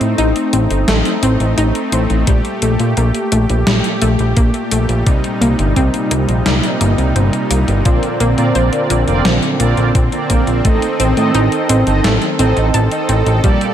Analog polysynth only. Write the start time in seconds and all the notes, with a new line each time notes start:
7.86 C4 F4 A#4 D5
8.38 C4 F4 A#4 D5
9.08 C4 F4 A#4 D5
9.60 C4 F4 A#4 D5
10.13 C4 F4 A#4 D5
10.65 C4 D#4 A4 D#5
11.17 C4 D#4 A4 D#5
11.87 C4 D#4 A4 D#5
12.39 C4 D#4 A4 D#5
12.92 C4 D#4 A4 D#5
13.44 A#3 G4 A4 D5